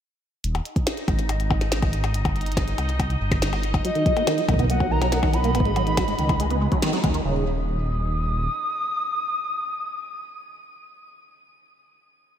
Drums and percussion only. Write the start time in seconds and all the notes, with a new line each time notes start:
0.44 closed hi-hat
0.55 closed hi-hat, percussion blips
0.65 closed hi-hat
0.76 kick, closed hi-hat
0.87 snare, closed hi-hat
0.97 closed hi-hat
1.08 kick, closed hi-hat, percussion blips
1.19 closed hi-hat
1.29 closed hi-hat, percussion blips
1.40 closed hi-hat
1.51 kick, percussion blips
1.61 snare, closed hi-hat
1.72 snare, closed hi-hat
1.82 kick, closed hi-hat, percussion blips
1.93 closed hi-hat
2.04 closed hi-hat, percussion blips
2.14 closed hi-hat
2.25 kick, closed hi-hat, percussion blips
2.36 closed hi-hat
2.41 closed hi-hat
2.46 closed hi-hat
2.52 closed hi-hat
2.57 kick, snare, closed hi-hat, percussion blips
2.68 closed hi-hat
2.78 closed hi-hat, percussion blips
2.89 closed hi-hat
2.99 kick, closed hi-hat, percussion blips
3.10 closed hi-hat
3.31 kick, snare, closed hi-hat, percussion blips
3.42 snare, closed hi-hat
3.53 closed hi-hat, percussion blips
3.63 closed hi-hat
3.74 kick, closed hi-hat, percussion blips
3.85 closed hi-hat
3.95 closed hi-hat
4.06 kick, closed hi-hat
4.17 closed hi-hat, percussion blips
4.27 snare, closed hi-hat, percussion blips
4.38 closed hi-hat
4.48 kick, closed hi-hat, percussion blips
4.54 kick
4.59 kick, closed hi-hat
4.64 kick
4.70 closed hi-hat
4.80 kick, percussion blips
5.02 snare, closed hi-hat, percussion blips
5.12 snare, closed hi-hat
5.23 kick, closed hi-hat, percussion blips
5.34 closed hi-hat
5.44 closed hi-hat
5.55 closed hi-hat, percussion blips
5.60 kick
5.65 closed hi-hat
5.76 closed hi-hat, percussion blips
5.87 closed hi-hat
5.97 kick, snare, closed hi-hat, percussion blips
6.08 closed hi-hat
6.19 closed hi-hat
6.29 kick, closed hi-hat, percussion blips
6.40 closed hi-hat
6.51 closed hi-hat
6.72 kick, closed hi-hat
6.82 snare, closed hi-hat
6.93 closed hi-hat
7.04 kick, closed hi-hat, percussion blips
7.14 closed hi-hat